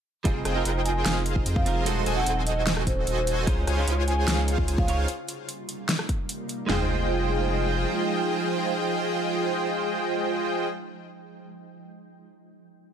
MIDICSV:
0, 0, Header, 1, 7, 480
1, 0, Start_track
1, 0, Key_signature, -4, "minor"
1, 0, Tempo, 402685
1, 300, Time_signature, 4, 2, 24, 8
1, 15417, End_track
2, 0, Start_track
2, 0, Title_t, "Vibraphone"
2, 0, Program_c, 0, 11
2, 1020, Note_on_c, 0, 80, 90
2, 1381, Note_off_c, 0, 80, 0
2, 1860, Note_on_c, 0, 77, 93
2, 1993, Note_off_c, 0, 77, 0
2, 2581, Note_on_c, 0, 78, 90
2, 2714, Note_off_c, 0, 78, 0
2, 2940, Note_on_c, 0, 75, 94
2, 3075, Note_off_c, 0, 75, 0
2, 3420, Note_on_c, 0, 72, 91
2, 3900, Note_off_c, 0, 72, 0
2, 4860, Note_on_c, 0, 80, 91
2, 5221, Note_off_c, 0, 80, 0
2, 5700, Note_on_c, 0, 77, 92
2, 5834, Note_off_c, 0, 77, 0
2, 15417, End_track
3, 0, Start_track
3, 0, Title_t, "Analog polysynth"
3, 0, Program_c, 1, 90
3, 300, Note_on_c, 1, 65, 86
3, 300, Note_on_c, 1, 68, 82
3, 300, Note_on_c, 1, 72, 74
3, 300, Note_on_c, 1, 75, 77
3, 300, Note_on_c, 1, 79, 92
3, 463, Note_off_c, 1, 65, 0
3, 463, Note_off_c, 1, 68, 0
3, 463, Note_off_c, 1, 72, 0
3, 463, Note_off_c, 1, 75, 0
3, 463, Note_off_c, 1, 79, 0
3, 540, Note_on_c, 1, 65, 92
3, 540, Note_on_c, 1, 68, 83
3, 540, Note_on_c, 1, 72, 86
3, 540, Note_on_c, 1, 75, 83
3, 540, Note_on_c, 1, 79, 101
3, 752, Note_off_c, 1, 65, 0
3, 752, Note_off_c, 1, 68, 0
3, 752, Note_off_c, 1, 72, 0
3, 752, Note_off_c, 1, 75, 0
3, 752, Note_off_c, 1, 79, 0
3, 780, Note_on_c, 1, 65, 97
3, 780, Note_on_c, 1, 68, 88
3, 780, Note_on_c, 1, 72, 83
3, 780, Note_on_c, 1, 75, 92
3, 780, Note_on_c, 1, 79, 103
3, 1232, Note_off_c, 1, 65, 0
3, 1232, Note_off_c, 1, 68, 0
3, 1232, Note_off_c, 1, 72, 0
3, 1232, Note_off_c, 1, 75, 0
3, 1232, Note_off_c, 1, 79, 0
3, 1260, Note_on_c, 1, 65, 82
3, 1260, Note_on_c, 1, 68, 76
3, 1260, Note_on_c, 1, 77, 89
3, 1261, Note_on_c, 1, 72, 76
3, 1261, Note_on_c, 1, 75, 76
3, 1712, Note_off_c, 1, 65, 0
3, 1712, Note_off_c, 1, 68, 0
3, 1712, Note_off_c, 1, 72, 0
3, 1712, Note_off_c, 1, 75, 0
3, 1712, Note_off_c, 1, 77, 0
3, 1741, Note_on_c, 1, 65, 91
3, 1741, Note_on_c, 1, 68, 79
3, 1741, Note_on_c, 1, 72, 83
3, 1741, Note_on_c, 1, 75, 78
3, 1741, Note_on_c, 1, 79, 98
3, 1952, Note_off_c, 1, 65, 0
3, 1952, Note_off_c, 1, 68, 0
3, 1952, Note_off_c, 1, 72, 0
3, 1952, Note_off_c, 1, 75, 0
3, 1952, Note_off_c, 1, 79, 0
3, 1981, Note_on_c, 1, 65, 88
3, 1981, Note_on_c, 1, 68, 77
3, 1981, Note_on_c, 1, 72, 83
3, 1981, Note_on_c, 1, 75, 76
3, 1981, Note_on_c, 1, 77, 96
3, 2192, Note_off_c, 1, 65, 0
3, 2192, Note_off_c, 1, 68, 0
3, 2192, Note_off_c, 1, 72, 0
3, 2192, Note_off_c, 1, 75, 0
3, 2192, Note_off_c, 1, 77, 0
3, 2221, Note_on_c, 1, 66, 76
3, 2221, Note_on_c, 1, 69, 73
3, 2221, Note_on_c, 1, 72, 65
3, 2221, Note_on_c, 1, 75, 69
3, 2221, Note_on_c, 1, 84, 84
3, 2432, Note_off_c, 1, 66, 0
3, 2432, Note_off_c, 1, 69, 0
3, 2432, Note_off_c, 1, 72, 0
3, 2432, Note_off_c, 1, 75, 0
3, 2432, Note_off_c, 1, 84, 0
3, 2460, Note_on_c, 1, 69, 92
3, 2461, Note_on_c, 1, 66, 98
3, 2461, Note_on_c, 1, 72, 90
3, 2461, Note_on_c, 1, 75, 92
3, 2461, Note_on_c, 1, 80, 113
3, 2672, Note_off_c, 1, 66, 0
3, 2672, Note_off_c, 1, 69, 0
3, 2672, Note_off_c, 1, 72, 0
3, 2672, Note_off_c, 1, 75, 0
3, 2672, Note_off_c, 1, 80, 0
3, 2701, Note_on_c, 1, 66, 79
3, 2701, Note_on_c, 1, 69, 72
3, 2701, Note_on_c, 1, 72, 79
3, 2701, Note_on_c, 1, 75, 71
3, 2701, Note_on_c, 1, 80, 84
3, 3632, Note_off_c, 1, 66, 0
3, 3632, Note_off_c, 1, 69, 0
3, 3632, Note_off_c, 1, 72, 0
3, 3632, Note_off_c, 1, 75, 0
3, 3632, Note_off_c, 1, 80, 0
3, 3661, Note_on_c, 1, 66, 93
3, 3661, Note_on_c, 1, 69, 88
3, 3661, Note_on_c, 1, 72, 83
3, 3661, Note_on_c, 1, 75, 86
3, 3661, Note_on_c, 1, 80, 102
3, 4112, Note_off_c, 1, 66, 0
3, 4112, Note_off_c, 1, 69, 0
3, 4112, Note_off_c, 1, 72, 0
3, 4112, Note_off_c, 1, 75, 0
3, 4112, Note_off_c, 1, 80, 0
3, 4140, Note_on_c, 1, 65, 83
3, 4140, Note_on_c, 1, 68, 78
3, 4140, Note_on_c, 1, 72, 77
3, 4140, Note_on_c, 1, 73, 76
3, 4140, Note_on_c, 1, 80, 94
3, 4303, Note_off_c, 1, 65, 0
3, 4303, Note_off_c, 1, 68, 0
3, 4303, Note_off_c, 1, 72, 0
3, 4303, Note_off_c, 1, 73, 0
3, 4303, Note_off_c, 1, 80, 0
3, 4380, Note_on_c, 1, 65, 89
3, 4380, Note_on_c, 1, 68, 88
3, 4380, Note_on_c, 1, 72, 82
3, 4380, Note_on_c, 1, 73, 82
3, 4380, Note_on_c, 1, 80, 98
3, 4591, Note_off_c, 1, 65, 0
3, 4591, Note_off_c, 1, 68, 0
3, 4591, Note_off_c, 1, 72, 0
3, 4591, Note_off_c, 1, 73, 0
3, 4592, Note_off_c, 1, 80, 0
3, 4620, Note_on_c, 1, 65, 97
3, 4620, Note_on_c, 1, 68, 87
3, 4620, Note_on_c, 1, 72, 91
3, 4620, Note_on_c, 1, 73, 88
3, 4620, Note_on_c, 1, 80, 112
3, 5071, Note_off_c, 1, 65, 0
3, 5071, Note_off_c, 1, 68, 0
3, 5071, Note_off_c, 1, 72, 0
3, 5071, Note_off_c, 1, 73, 0
3, 5071, Note_off_c, 1, 80, 0
3, 5099, Note_on_c, 1, 73, 78
3, 5100, Note_on_c, 1, 65, 80
3, 5100, Note_on_c, 1, 68, 75
3, 5100, Note_on_c, 1, 72, 79
3, 5100, Note_on_c, 1, 77, 89
3, 5551, Note_off_c, 1, 65, 0
3, 5551, Note_off_c, 1, 68, 0
3, 5551, Note_off_c, 1, 72, 0
3, 5551, Note_off_c, 1, 73, 0
3, 5551, Note_off_c, 1, 77, 0
3, 5580, Note_on_c, 1, 65, 85
3, 5580, Note_on_c, 1, 68, 84
3, 5580, Note_on_c, 1, 72, 86
3, 5580, Note_on_c, 1, 73, 80
3, 5580, Note_on_c, 1, 80, 100
3, 5792, Note_off_c, 1, 65, 0
3, 5792, Note_off_c, 1, 68, 0
3, 5792, Note_off_c, 1, 72, 0
3, 5792, Note_off_c, 1, 73, 0
3, 5792, Note_off_c, 1, 80, 0
3, 5820, Note_on_c, 1, 65, 86
3, 5820, Note_on_c, 1, 68, 78
3, 5820, Note_on_c, 1, 72, 79
3, 5820, Note_on_c, 1, 73, 81
3, 5820, Note_on_c, 1, 77, 99
3, 6031, Note_off_c, 1, 72, 0
3, 6032, Note_off_c, 1, 65, 0
3, 6032, Note_off_c, 1, 68, 0
3, 6032, Note_off_c, 1, 73, 0
3, 6032, Note_off_c, 1, 77, 0
3, 7981, Note_on_c, 1, 65, 83
3, 7981, Note_on_c, 1, 68, 77
3, 7981, Note_on_c, 1, 72, 78
3, 7981, Note_on_c, 1, 75, 78
3, 7981, Note_on_c, 1, 79, 95
3, 12726, Note_off_c, 1, 65, 0
3, 12726, Note_off_c, 1, 68, 0
3, 12726, Note_off_c, 1, 72, 0
3, 12726, Note_off_c, 1, 75, 0
3, 12726, Note_off_c, 1, 79, 0
3, 15417, End_track
4, 0, Start_track
4, 0, Title_t, "Clean electric guitar"
4, 0, Program_c, 2, 27
4, 288, Note_on_c, 2, 55, 95
4, 294, Note_on_c, 2, 60, 85
4, 300, Note_on_c, 2, 63, 79
4, 306, Note_on_c, 2, 65, 81
4, 311, Note_on_c, 2, 68, 102
4, 626, Note_off_c, 2, 55, 0
4, 629, Note_off_c, 2, 60, 0
4, 632, Note_off_c, 2, 63, 0
4, 635, Note_off_c, 2, 65, 0
4, 638, Note_off_c, 2, 68, 0
4, 649, Note_on_c, 2, 60, 89
4, 661, Note_on_c, 2, 63, 94
4, 673, Note_on_c, 2, 65, 94
4, 685, Note_on_c, 2, 70, 110
4, 1946, Note_off_c, 2, 60, 0
4, 1952, Note_off_c, 2, 63, 0
4, 1958, Note_off_c, 2, 65, 0
4, 1963, Note_off_c, 2, 70, 0
4, 1969, Note_on_c, 2, 55, 86
4, 1975, Note_on_c, 2, 60, 78
4, 1981, Note_on_c, 2, 63, 77
4, 1987, Note_on_c, 2, 65, 79
4, 1993, Note_on_c, 2, 70, 96
4, 2186, Note_off_c, 2, 55, 0
4, 2189, Note_off_c, 2, 60, 0
4, 2192, Note_off_c, 2, 63, 0
4, 2195, Note_off_c, 2, 65, 0
4, 2198, Note_off_c, 2, 70, 0
4, 2208, Note_on_c, 2, 56, 100
4, 2214, Note_on_c, 2, 60, 89
4, 2220, Note_on_c, 2, 63, 89
4, 2226, Note_on_c, 2, 66, 91
4, 2232, Note_on_c, 2, 69, 113
4, 2546, Note_off_c, 2, 56, 0
4, 2549, Note_off_c, 2, 60, 0
4, 2552, Note_off_c, 2, 63, 0
4, 2555, Note_off_c, 2, 66, 0
4, 2558, Note_off_c, 2, 69, 0
4, 2570, Note_on_c, 2, 60, 76
4, 2582, Note_on_c, 2, 63, 75
4, 2594, Note_on_c, 2, 66, 75
4, 2606, Note_on_c, 2, 69, 89
4, 4106, Note_off_c, 2, 60, 0
4, 4112, Note_off_c, 2, 63, 0
4, 4118, Note_off_c, 2, 66, 0
4, 4124, Note_off_c, 2, 69, 0
4, 4129, Note_on_c, 2, 56, 90
4, 4134, Note_on_c, 2, 61, 84
4, 4141, Note_on_c, 2, 63, 85
4, 4146, Note_on_c, 2, 65, 79
4, 4153, Note_on_c, 2, 72, 99
4, 4463, Note_off_c, 2, 56, 0
4, 4469, Note_off_c, 2, 61, 0
4, 4472, Note_off_c, 2, 63, 0
4, 4475, Note_off_c, 2, 65, 0
4, 4478, Note_off_c, 2, 72, 0
4, 4478, Note_on_c, 2, 56, 99
4, 4490, Note_on_c, 2, 61, 95
4, 4502, Note_on_c, 2, 63, 89
4, 4514, Note_on_c, 2, 65, 91
4, 5780, Note_off_c, 2, 56, 0
4, 5786, Note_off_c, 2, 61, 0
4, 5792, Note_off_c, 2, 63, 0
4, 5798, Note_off_c, 2, 65, 0
4, 5808, Note_on_c, 2, 56, 86
4, 5814, Note_on_c, 2, 61, 78
4, 5820, Note_on_c, 2, 63, 82
4, 5826, Note_on_c, 2, 65, 76
4, 5832, Note_on_c, 2, 73, 98
4, 6026, Note_off_c, 2, 56, 0
4, 6029, Note_off_c, 2, 61, 0
4, 6032, Note_off_c, 2, 63, 0
4, 6035, Note_off_c, 2, 65, 0
4, 6038, Note_off_c, 2, 73, 0
4, 7944, Note_on_c, 2, 56, 83
4, 7962, Note_on_c, 2, 63, 80
4, 7980, Note_on_c, 2, 65, 84
4, 7997, Note_on_c, 2, 79, 78
4, 8016, Note_on_c, 2, 72, 99
4, 13171, Note_off_c, 2, 56, 0
4, 13188, Note_off_c, 2, 63, 0
4, 13207, Note_off_c, 2, 65, 0
4, 13224, Note_off_c, 2, 79, 0
4, 13242, Note_off_c, 2, 72, 0
4, 15417, End_track
5, 0, Start_track
5, 0, Title_t, "Ambient pad"
5, 0, Program_c, 3, 92
5, 300, Note_on_c, 3, 53, 82
5, 300, Note_on_c, 3, 63, 74
5, 300, Note_on_c, 3, 77, 72
5, 2201, Note_off_c, 3, 53, 0
5, 2201, Note_off_c, 3, 63, 0
5, 2201, Note_off_c, 3, 77, 0
5, 2220, Note_on_c, 3, 66, 92
5, 4121, Note_off_c, 3, 66, 0
5, 4142, Note_on_c, 3, 49, 78
5, 4142, Note_on_c, 3, 65, 94
5, 6042, Note_off_c, 3, 49, 0
5, 6042, Note_off_c, 3, 65, 0
5, 6060, Note_on_c, 3, 48, 83
5, 6060, Note_on_c, 3, 55, 70
5, 6060, Note_on_c, 3, 63, 89
5, 6061, Note_on_c, 3, 58, 73
5, 7961, Note_off_c, 3, 48, 0
5, 7961, Note_off_c, 3, 55, 0
5, 7961, Note_off_c, 3, 58, 0
5, 7961, Note_off_c, 3, 63, 0
5, 7980, Note_on_c, 3, 53, 83
5, 7980, Note_on_c, 3, 56, 87
5, 7980, Note_on_c, 3, 63, 74
5, 7980, Note_on_c, 3, 79, 78
5, 12726, Note_off_c, 3, 53, 0
5, 12726, Note_off_c, 3, 56, 0
5, 12726, Note_off_c, 3, 63, 0
5, 12726, Note_off_c, 3, 79, 0
5, 15417, End_track
6, 0, Start_track
6, 0, Title_t, "Sub bass"
6, 0, Program_c, 4, 38
6, 300, Note_on_c, 4, 29, 90
6, 516, Note_off_c, 4, 29, 0
6, 541, Note_on_c, 4, 29, 91
6, 757, Note_off_c, 4, 29, 0
6, 780, Note_on_c, 4, 29, 102
6, 1236, Note_off_c, 4, 29, 0
6, 1260, Note_on_c, 4, 29, 95
6, 1716, Note_off_c, 4, 29, 0
6, 1741, Note_on_c, 4, 41, 93
6, 1957, Note_off_c, 4, 41, 0
6, 1981, Note_on_c, 4, 29, 98
6, 2221, Note_on_c, 4, 27, 93
6, 2238, Note_off_c, 4, 29, 0
6, 2437, Note_off_c, 4, 27, 0
6, 2461, Note_on_c, 4, 27, 98
6, 2677, Note_off_c, 4, 27, 0
6, 2701, Note_on_c, 4, 27, 102
6, 3637, Note_off_c, 4, 27, 0
6, 3661, Note_on_c, 4, 27, 98
6, 4140, Note_on_c, 4, 37, 92
6, 4158, Note_off_c, 4, 27, 0
6, 4356, Note_off_c, 4, 37, 0
6, 4381, Note_on_c, 4, 37, 97
6, 4597, Note_off_c, 4, 37, 0
6, 4621, Note_on_c, 4, 37, 95
6, 5077, Note_off_c, 4, 37, 0
6, 5101, Note_on_c, 4, 37, 102
6, 5557, Note_off_c, 4, 37, 0
6, 5580, Note_on_c, 4, 37, 96
6, 5796, Note_off_c, 4, 37, 0
6, 5821, Note_on_c, 4, 37, 99
6, 6037, Note_off_c, 4, 37, 0
6, 7980, Note_on_c, 4, 29, 91
6, 9372, Note_off_c, 4, 29, 0
6, 15417, End_track
7, 0, Start_track
7, 0, Title_t, "Drums"
7, 300, Note_on_c, 9, 36, 120
7, 300, Note_on_c, 9, 42, 81
7, 419, Note_off_c, 9, 36, 0
7, 419, Note_off_c, 9, 42, 0
7, 540, Note_on_c, 9, 37, 65
7, 540, Note_on_c, 9, 42, 68
7, 659, Note_off_c, 9, 37, 0
7, 659, Note_off_c, 9, 42, 0
7, 780, Note_on_c, 9, 42, 86
7, 899, Note_off_c, 9, 42, 0
7, 1020, Note_on_c, 9, 42, 61
7, 1139, Note_off_c, 9, 42, 0
7, 1260, Note_on_c, 9, 38, 122
7, 1260, Note_on_c, 9, 42, 85
7, 1379, Note_off_c, 9, 38, 0
7, 1379, Note_off_c, 9, 42, 0
7, 1500, Note_on_c, 9, 42, 68
7, 1619, Note_off_c, 9, 42, 0
7, 1621, Note_on_c, 9, 36, 61
7, 1740, Note_off_c, 9, 36, 0
7, 1740, Note_on_c, 9, 42, 88
7, 1859, Note_off_c, 9, 42, 0
7, 1861, Note_on_c, 9, 36, 109
7, 1980, Note_on_c, 9, 42, 73
7, 1981, Note_off_c, 9, 36, 0
7, 2099, Note_off_c, 9, 42, 0
7, 2220, Note_on_c, 9, 42, 89
7, 2339, Note_off_c, 9, 42, 0
7, 2460, Note_on_c, 9, 42, 68
7, 2579, Note_off_c, 9, 42, 0
7, 2700, Note_on_c, 9, 42, 91
7, 2819, Note_off_c, 9, 42, 0
7, 2939, Note_on_c, 9, 42, 67
7, 3059, Note_off_c, 9, 42, 0
7, 3180, Note_on_c, 9, 38, 127
7, 3180, Note_on_c, 9, 42, 86
7, 3299, Note_off_c, 9, 38, 0
7, 3299, Note_off_c, 9, 42, 0
7, 3301, Note_on_c, 9, 37, 80
7, 3420, Note_off_c, 9, 37, 0
7, 3420, Note_on_c, 9, 36, 62
7, 3420, Note_on_c, 9, 42, 70
7, 3539, Note_off_c, 9, 36, 0
7, 3539, Note_off_c, 9, 42, 0
7, 3660, Note_on_c, 9, 42, 89
7, 3779, Note_off_c, 9, 42, 0
7, 3900, Note_on_c, 9, 42, 73
7, 4019, Note_off_c, 9, 42, 0
7, 4140, Note_on_c, 9, 36, 125
7, 4140, Note_on_c, 9, 42, 81
7, 4259, Note_off_c, 9, 36, 0
7, 4259, Note_off_c, 9, 42, 0
7, 4380, Note_on_c, 9, 37, 59
7, 4380, Note_on_c, 9, 42, 69
7, 4499, Note_off_c, 9, 37, 0
7, 4499, Note_off_c, 9, 42, 0
7, 4620, Note_on_c, 9, 42, 89
7, 4739, Note_off_c, 9, 42, 0
7, 4860, Note_on_c, 9, 42, 61
7, 4979, Note_off_c, 9, 42, 0
7, 5099, Note_on_c, 9, 38, 127
7, 5099, Note_on_c, 9, 42, 88
7, 5219, Note_off_c, 9, 38, 0
7, 5219, Note_off_c, 9, 42, 0
7, 5340, Note_on_c, 9, 42, 69
7, 5459, Note_off_c, 9, 42, 0
7, 5461, Note_on_c, 9, 36, 65
7, 5580, Note_off_c, 9, 36, 0
7, 5580, Note_on_c, 9, 42, 82
7, 5699, Note_off_c, 9, 42, 0
7, 5701, Note_on_c, 9, 36, 120
7, 5820, Note_off_c, 9, 36, 0
7, 5820, Note_on_c, 9, 42, 69
7, 5939, Note_off_c, 9, 42, 0
7, 6059, Note_on_c, 9, 42, 78
7, 6179, Note_off_c, 9, 42, 0
7, 6300, Note_on_c, 9, 42, 70
7, 6419, Note_off_c, 9, 42, 0
7, 6540, Note_on_c, 9, 42, 81
7, 6659, Note_off_c, 9, 42, 0
7, 6779, Note_on_c, 9, 42, 62
7, 6899, Note_off_c, 9, 42, 0
7, 7020, Note_on_c, 9, 38, 124
7, 7020, Note_on_c, 9, 42, 82
7, 7139, Note_off_c, 9, 38, 0
7, 7139, Note_off_c, 9, 42, 0
7, 7141, Note_on_c, 9, 37, 79
7, 7260, Note_off_c, 9, 37, 0
7, 7260, Note_on_c, 9, 36, 64
7, 7260, Note_on_c, 9, 42, 66
7, 7379, Note_off_c, 9, 36, 0
7, 7379, Note_off_c, 9, 42, 0
7, 7499, Note_on_c, 9, 42, 81
7, 7619, Note_off_c, 9, 42, 0
7, 7740, Note_on_c, 9, 42, 68
7, 7859, Note_off_c, 9, 42, 0
7, 7980, Note_on_c, 9, 38, 102
7, 7980, Note_on_c, 9, 43, 104
7, 7980, Note_on_c, 9, 46, 92
7, 8099, Note_off_c, 9, 38, 0
7, 8099, Note_off_c, 9, 43, 0
7, 8099, Note_off_c, 9, 46, 0
7, 15417, End_track
0, 0, End_of_file